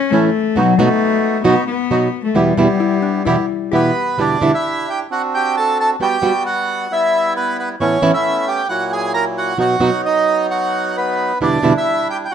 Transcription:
Already playing: C#4
0.11 A2 E3 A3 C#4 E4
0.56 B2 F#3 B3 D#4 F#4
0.79 B2 F#3 A3 B3 D#4 F#4
1.44 B2 F#3 B3 D#4 F#4
1.67 B3
1.90 B2 F#3 B3 D#4 F#4
2.24 A3
2.35 E2 B2 E3 G3 B3 E4 G4
2.57 E2 B2 E3 G3 B3 E4 G4
2.80 E4
3.02 D4
3.25 E2 B2 E3 G3 B3 E4 G4
3.72 E2 B2 E3 G3 B3 E4 G4 B4
4.18 E2 B2 D3 G3 B3 D4 E4 G4 D5
4.41 E2 B2 D3 G3 B3 D4 E4 G4
4.54 E4 E5
4.90 G4 G5
5.10 C4 D4 F#4 F#5
5.34 G4 G5
5.57 A4 A5
5.80 A4 A5
6.00 G3 B3 F#4 G4 G5
6.22 G3 B3 F#4
6.46 F#4 F#5
6.91 G3 B3 E4 E5
7.37 B3 B4
7.59 B3 B4
7.80 A2 E3 A3 B3 C#4 E4 C#5
8.02 A2 E3 A3 B3 C#4 E4
8.14 E4 E5
8.48 G4 G5
8.69 A#2 F#3 A#3 E4 F#4 F#5
8.92 G#4 G#5
9.14 A#4 A#5
9.38 F#4 F#5
9.58 B2 F#3 B3 D#4 F#4 F#5
9.80 B2 F#3 B3 D#4 F#4
10.05 D#4 D#5
10.50 F#4 F#5
10.97 B3 B4
11.41 E2 B2 D3 G3 B3 D4 E4 D5
11.62 E2 B2 D3 G3 B3 D4 E4
11.78 E4 E5
12.10 G4 G5
12.25 G5

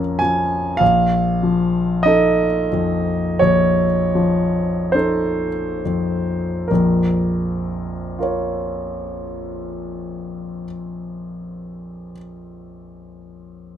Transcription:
Already playing: F2 F3 C#4 A#4 A#5
0.19 F3 G#5
0.77 A#1 F5
1.43 F3
2.03 D#4 A4 D#5
2.72 F2
3.39 A#1 C#5
4.15 F3
4.92 D#4 A4 C5
5.85 F2
6.68 A#1 F2 A#4
8.19 F4 A#4
8.23 C#5

